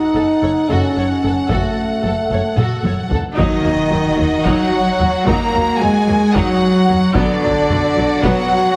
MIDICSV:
0, 0, Header, 1, 11, 480
1, 0, Start_track
1, 0, Key_signature, -6, "minor"
1, 0, Tempo, 538600
1, 1338, Time_signature, 7, 3, 24, 8
1, 7807, End_track
2, 0, Start_track
2, 0, Title_t, "Violin section"
2, 0, Program_c, 0, 48
2, 0, Note_on_c, 0, 78, 49
2, 2804, Note_off_c, 0, 78, 0
2, 3012, Note_on_c, 0, 75, 71
2, 3939, Note_off_c, 0, 75, 0
2, 3968, Note_on_c, 0, 78, 73
2, 4692, Note_off_c, 0, 78, 0
2, 4698, Note_on_c, 0, 82, 74
2, 5163, Note_on_c, 0, 80, 73
2, 5168, Note_off_c, 0, 82, 0
2, 5650, Note_off_c, 0, 80, 0
2, 5657, Note_on_c, 0, 78, 76
2, 6375, Note_on_c, 0, 74, 78
2, 6377, Note_off_c, 0, 78, 0
2, 7317, Note_off_c, 0, 74, 0
2, 7336, Note_on_c, 0, 78, 82
2, 7807, Note_off_c, 0, 78, 0
2, 7807, End_track
3, 0, Start_track
3, 0, Title_t, "Violin section"
3, 0, Program_c, 1, 48
3, 143, Note_on_c, 1, 69, 42
3, 215, Note_off_c, 1, 69, 0
3, 385, Note_on_c, 1, 73, 44
3, 456, Note_off_c, 1, 73, 0
3, 626, Note_on_c, 1, 66, 53
3, 845, Note_off_c, 1, 66, 0
3, 874, Note_on_c, 1, 73, 37
3, 945, Note_off_c, 1, 73, 0
3, 1120, Note_on_c, 1, 69, 37
3, 1191, Note_off_c, 1, 69, 0
3, 1352, Note_on_c, 1, 66, 48
3, 1569, Note_off_c, 1, 66, 0
3, 1831, Note_on_c, 1, 69, 31
3, 1902, Note_off_c, 1, 69, 0
3, 2078, Note_on_c, 1, 73, 35
3, 2150, Note_off_c, 1, 73, 0
3, 2318, Note_on_c, 1, 66, 48
3, 2531, Note_off_c, 1, 66, 0
3, 2546, Note_on_c, 1, 73, 34
3, 2617, Note_off_c, 1, 73, 0
3, 2800, Note_on_c, 1, 69, 39
3, 2871, Note_off_c, 1, 69, 0
3, 3021, Note_on_c, 1, 66, 46
3, 3028, Note_off_c, 1, 66, 0
3, 3028, Note_on_c, 1, 66, 53
3, 6347, Note_off_c, 1, 66, 0
3, 6371, Note_on_c, 1, 66, 51
3, 6373, Note_off_c, 1, 66, 0
3, 6373, Note_on_c, 1, 66, 59
3, 7807, Note_off_c, 1, 66, 0
3, 7807, End_track
4, 0, Start_track
4, 0, Title_t, "Trumpet"
4, 0, Program_c, 2, 56
4, 3022, Note_on_c, 2, 63, 56
4, 3981, Note_on_c, 2, 66, 60
4, 3994, Note_off_c, 2, 63, 0
4, 4689, Note_off_c, 2, 66, 0
4, 4694, Note_on_c, 2, 70, 64
4, 5166, Note_off_c, 2, 70, 0
4, 5178, Note_on_c, 2, 68, 62
4, 5662, Note_on_c, 2, 66, 66
4, 5676, Note_off_c, 2, 68, 0
4, 6370, Note_off_c, 2, 66, 0
4, 6375, Note_on_c, 2, 62, 69
4, 7317, Note_off_c, 2, 62, 0
4, 7339, Note_on_c, 2, 66, 73
4, 7807, Note_off_c, 2, 66, 0
4, 7807, End_track
5, 0, Start_track
5, 0, Title_t, "French horn section"
5, 0, Program_c, 3, 60
5, 0, Note_on_c, 3, 63, 79
5, 611, Note_on_c, 3, 61, 61
5, 616, Note_off_c, 3, 63, 0
5, 1334, Note_off_c, 3, 61, 0
5, 1349, Note_on_c, 3, 57, 54
5, 2284, Note_off_c, 3, 57, 0
5, 3009, Note_on_c, 3, 51, 63
5, 3938, Note_off_c, 3, 51, 0
5, 3977, Note_on_c, 3, 54, 65
5, 4697, Note_off_c, 3, 54, 0
5, 4707, Note_on_c, 3, 58, 66
5, 5173, Note_off_c, 3, 58, 0
5, 5182, Note_on_c, 3, 56, 64
5, 5654, Note_on_c, 3, 54, 67
5, 5660, Note_off_c, 3, 56, 0
5, 6372, Note_on_c, 3, 50, 73
5, 6376, Note_off_c, 3, 54, 0
5, 7315, Note_off_c, 3, 50, 0
5, 7355, Note_on_c, 3, 54, 72
5, 7807, Note_off_c, 3, 54, 0
5, 7807, End_track
6, 0, Start_track
6, 0, Title_t, "Trombone section"
6, 0, Program_c, 4, 61
6, 3022, Note_on_c, 4, 51, 65
6, 3944, Note_off_c, 4, 51, 0
6, 3984, Note_on_c, 4, 54, 65
6, 4686, Note_off_c, 4, 54, 0
6, 4704, Note_on_c, 4, 58, 66
6, 5169, Note_on_c, 4, 56, 68
6, 5181, Note_off_c, 4, 58, 0
6, 5643, Note_off_c, 4, 56, 0
6, 5647, Note_on_c, 4, 54, 69
6, 6358, Note_off_c, 4, 54, 0
6, 6370, Note_on_c, 4, 50, 74
6, 7314, Note_off_c, 4, 50, 0
6, 7343, Note_on_c, 4, 54, 73
6, 7807, Note_off_c, 4, 54, 0
6, 7807, End_track
7, 0, Start_track
7, 0, Title_t, "Viola section"
7, 0, Program_c, 5, 48
7, 125, Note_on_c, 5, 69, 40
7, 196, Note_off_c, 5, 69, 0
7, 372, Note_on_c, 5, 69, 35
7, 444, Note_off_c, 5, 69, 0
7, 607, Note_on_c, 5, 69, 45
7, 832, Note_off_c, 5, 69, 0
7, 842, Note_on_c, 5, 69, 40
7, 914, Note_off_c, 5, 69, 0
7, 1092, Note_on_c, 5, 69, 35
7, 1163, Note_off_c, 5, 69, 0
7, 1327, Note_on_c, 5, 69, 48
7, 1555, Note_off_c, 5, 69, 0
7, 1810, Note_on_c, 5, 69, 31
7, 1881, Note_off_c, 5, 69, 0
7, 2054, Note_on_c, 5, 69, 32
7, 2126, Note_off_c, 5, 69, 0
7, 2295, Note_on_c, 5, 69, 47
7, 2514, Note_off_c, 5, 69, 0
7, 2525, Note_on_c, 5, 69, 34
7, 2596, Note_off_c, 5, 69, 0
7, 2765, Note_on_c, 5, 69, 33
7, 2836, Note_off_c, 5, 69, 0
7, 3000, Note_on_c, 5, 54, 58
7, 3002, Note_on_c, 5, 63, 59
7, 3227, Note_off_c, 5, 54, 0
7, 3233, Note_off_c, 5, 63, 0
7, 3234, Note_on_c, 5, 58, 40
7, 3237, Note_on_c, 5, 54, 40
7, 3305, Note_off_c, 5, 58, 0
7, 3309, Note_off_c, 5, 54, 0
7, 3480, Note_on_c, 5, 54, 44
7, 3481, Note_off_c, 5, 54, 0
7, 3481, Note_on_c, 5, 54, 41
7, 3552, Note_off_c, 5, 54, 0
7, 3716, Note_on_c, 5, 54, 40
7, 3716, Note_on_c, 5, 58, 40
7, 3787, Note_off_c, 5, 58, 0
7, 3788, Note_off_c, 5, 54, 0
7, 3973, Note_on_c, 5, 63, 63
7, 3976, Note_on_c, 5, 54, 65
7, 4198, Note_off_c, 5, 63, 0
7, 4200, Note_off_c, 5, 54, 0
7, 4447, Note_on_c, 5, 54, 51
7, 4518, Note_off_c, 5, 54, 0
7, 4692, Note_on_c, 5, 54, 60
7, 4698, Note_on_c, 5, 63, 53
7, 4916, Note_off_c, 5, 54, 0
7, 4921, Note_off_c, 5, 63, 0
7, 4926, Note_on_c, 5, 54, 38
7, 4928, Note_on_c, 5, 58, 41
7, 4998, Note_off_c, 5, 54, 0
7, 4999, Note_off_c, 5, 58, 0
7, 5160, Note_on_c, 5, 54, 45
7, 5166, Note_off_c, 5, 54, 0
7, 5166, Note_on_c, 5, 54, 46
7, 5238, Note_off_c, 5, 54, 0
7, 5410, Note_on_c, 5, 54, 44
7, 5411, Note_on_c, 5, 58, 42
7, 5481, Note_off_c, 5, 54, 0
7, 5482, Note_off_c, 5, 58, 0
7, 5651, Note_on_c, 5, 54, 67
7, 5653, Note_on_c, 5, 63, 66
7, 5877, Note_off_c, 5, 54, 0
7, 5878, Note_off_c, 5, 63, 0
7, 6130, Note_on_c, 5, 54, 47
7, 6131, Note_off_c, 5, 54, 0
7, 6131, Note_on_c, 5, 54, 50
7, 6202, Note_off_c, 5, 54, 0
7, 6380, Note_on_c, 5, 54, 70
7, 6380, Note_on_c, 5, 59, 65
7, 6602, Note_off_c, 5, 54, 0
7, 6602, Note_off_c, 5, 59, 0
7, 6632, Note_on_c, 5, 54, 47
7, 6703, Note_off_c, 5, 54, 0
7, 6860, Note_on_c, 5, 50, 45
7, 6863, Note_on_c, 5, 54, 42
7, 6932, Note_off_c, 5, 50, 0
7, 6934, Note_off_c, 5, 54, 0
7, 7101, Note_on_c, 5, 54, 50
7, 7107, Note_off_c, 5, 54, 0
7, 7107, Note_on_c, 5, 54, 52
7, 7179, Note_off_c, 5, 54, 0
7, 7341, Note_on_c, 5, 59, 75
7, 7346, Note_on_c, 5, 54, 71
7, 7563, Note_off_c, 5, 59, 0
7, 7565, Note_off_c, 5, 54, 0
7, 7807, End_track
8, 0, Start_track
8, 0, Title_t, "Cello section"
8, 0, Program_c, 6, 48
8, 138, Note_on_c, 6, 42, 39
8, 209, Note_off_c, 6, 42, 0
8, 377, Note_on_c, 6, 42, 39
8, 448, Note_off_c, 6, 42, 0
8, 618, Note_on_c, 6, 42, 51
8, 689, Note_off_c, 6, 42, 0
8, 858, Note_on_c, 6, 42, 36
8, 929, Note_off_c, 6, 42, 0
8, 1099, Note_on_c, 6, 42, 35
8, 1170, Note_off_c, 6, 42, 0
8, 1338, Note_on_c, 6, 42, 50
8, 1409, Note_off_c, 6, 42, 0
8, 1820, Note_on_c, 6, 42, 35
8, 1892, Note_off_c, 6, 42, 0
8, 2057, Note_on_c, 6, 42, 34
8, 2129, Note_off_c, 6, 42, 0
8, 2294, Note_on_c, 6, 42, 45
8, 2365, Note_off_c, 6, 42, 0
8, 2536, Note_on_c, 6, 42, 33
8, 2608, Note_off_c, 6, 42, 0
8, 2777, Note_on_c, 6, 42, 32
8, 2848, Note_off_c, 6, 42, 0
8, 3013, Note_on_c, 6, 51, 59
8, 3940, Note_off_c, 6, 51, 0
8, 3975, Note_on_c, 6, 54, 61
8, 4682, Note_off_c, 6, 54, 0
8, 4697, Note_on_c, 6, 58, 63
8, 5177, Note_off_c, 6, 58, 0
8, 5182, Note_on_c, 6, 56, 63
8, 5659, Note_off_c, 6, 56, 0
8, 5665, Note_on_c, 6, 54, 62
8, 6381, Note_off_c, 6, 54, 0
8, 6385, Note_on_c, 6, 50, 68
8, 7322, Note_off_c, 6, 50, 0
8, 7347, Note_on_c, 6, 54, 66
8, 7807, Note_off_c, 6, 54, 0
8, 7807, End_track
9, 0, Start_track
9, 0, Title_t, "Double bass section"
9, 0, Program_c, 7, 48
9, 132, Note_on_c, 7, 30, 41
9, 204, Note_off_c, 7, 30, 0
9, 377, Note_on_c, 7, 30, 40
9, 448, Note_off_c, 7, 30, 0
9, 618, Note_on_c, 7, 30, 57
9, 689, Note_off_c, 7, 30, 0
9, 864, Note_on_c, 7, 30, 36
9, 935, Note_off_c, 7, 30, 0
9, 1104, Note_on_c, 7, 30, 37
9, 1175, Note_off_c, 7, 30, 0
9, 1337, Note_on_c, 7, 30, 50
9, 1408, Note_off_c, 7, 30, 0
9, 1814, Note_on_c, 7, 30, 34
9, 1885, Note_off_c, 7, 30, 0
9, 2057, Note_on_c, 7, 30, 32
9, 2129, Note_off_c, 7, 30, 0
9, 2291, Note_on_c, 7, 30, 45
9, 2363, Note_off_c, 7, 30, 0
9, 2529, Note_on_c, 7, 30, 34
9, 2601, Note_off_c, 7, 30, 0
9, 2769, Note_on_c, 7, 30, 34
9, 2840, Note_off_c, 7, 30, 0
9, 3015, Note_on_c, 7, 39, 58
9, 3087, Note_off_c, 7, 39, 0
9, 3251, Note_on_c, 7, 39, 41
9, 3323, Note_off_c, 7, 39, 0
9, 3490, Note_on_c, 7, 39, 43
9, 3562, Note_off_c, 7, 39, 0
9, 3734, Note_on_c, 7, 39, 41
9, 3805, Note_off_c, 7, 39, 0
9, 3974, Note_on_c, 7, 39, 62
9, 4045, Note_off_c, 7, 39, 0
9, 4455, Note_on_c, 7, 39, 48
9, 4526, Note_off_c, 7, 39, 0
9, 4698, Note_on_c, 7, 39, 63
9, 4770, Note_off_c, 7, 39, 0
9, 4942, Note_on_c, 7, 39, 45
9, 5013, Note_off_c, 7, 39, 0
9, 5180, Note_on_c, 7, 39, 46
9, 5251, Note_off_c, 7, 39, 0
9, 5419, Note_on_c, 7, 39, 44
9, 5490, Note_off_c, 7, 39, 0
9, 5659, Note_on_c, 7, 39, 65
9, 5730, Note_off_c, 7, 39, 0
9, 6143, Note_on_c, 7, 39, 50
9, 6214, Note_off_c, 7, 39, 0
9, 6377, Note_on_c, 7, 35, 68
9, 6448, Note_off_c, 7, 35, 0
9, 6627, Note_on_c, 7, 35, 48
9, 6698, Note_off_c, 7, 35, 0
9, 6862, Note_on_c, 7, 35, 46
9, 6933, Note_off_c, 7, 35, 0
9, 7106, Note_on_c, 7, 35, 49
9, 7177, Note_off_c, 7, 35, 0
9, 7348, Note_on_c, 7, 35, 74
9, 7419, Note_off_c, 7, 35, 0
9, 7807, End_track
10, 0, Start_track
10, 0, Title_t, "Impact"
10, 0, Program_c, 8, 103
10, 3016, Note_on_c, 8, 60, 62
10, 4697, Note_off_c, 8, 60, 0
10, 7807, End_track
11, 0, Start_track
11, 0, Title_t, "Taiko and cinematic ensemble drums"
11, 1331, Note_on_c, 9, 41, 76
11, 1420, Note_off_c, 9, 41, 0
11, 2291, Note_on_c, 9, 47, 59
11, 2380, Note_off_c, 9, 47, 0
11, 2528, Note_on_c, 9, 48, 63
11, 2617, Note_off_c, 9, 48, 0
11, 2768, Note_on_c, 9, 43, 68
11, 2858, Note_off_c, 9, 43, 0
11, 3008, Note_on_c, 9, 41, 79
11, 3097, Note_off_c, 9, 41, 0
11, 3969, Note_on_c, 9, 41, 67
11, 4059, Note_off_c, 9, 41, 0
11, 4691, Note_on_c, 9, 41, 83
11, 4780, Note_off_c, 9, 41, 0
11, 5653, Note_on_c, 9, 41, 70
11, 5742, Note_off_c, 9, 41, 0
11, 6374, Note_on_c, 9, 41, 92
11, 6463, Note_off_c, 9, 41, 0
11, 6614, Note_on_c, 9, 45, 44
11, 6704, Note_off_c, 9, 45, 0
11, 6858, Note_on_c, 9, 45, 52
11, 6947, Note_off_c, 9, 45, 0
11, 7335, Note_on_c, 9, 41, 74
11, 7424, Note_off_c, 9, 41, 0
11, 7807, End_track
0, 0, End_of_file